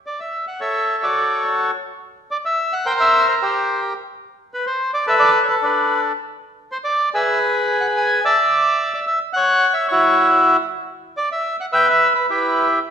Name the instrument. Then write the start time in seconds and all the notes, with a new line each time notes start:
bandoneon
0.06 D5
0.20 E5
0.47 F#5
0.60 A4 C#5 E5
1.03 F#4 A4 D5
2.31 D5
2.45 E5
2.73 F#5
2.86 A#4 C5 G5
3.00 E5
3.29 C5
3.42 G4 C5
4.54 B4
4.66 C5
4.94 D5
5.07 A4 B4 E5
5.20 D5
5.43 C#5
5.49 B4
5.62 D4 B4
6.72 C5
6.84 D5
7.14 G#4 B4 E5
7.81 F#5
7.97 G#5
8.25 D5 E5 A5
8.94 D5
9.07 E5
9.33 C#5 F#5
9.73 E5
9.88 E4 F#4 C#5
11.17 D5
11.32 E5
11.60 F#5
11.72 B4 E5 G5
11.90 E5
12.15 B4
12.30 E4 G4 B4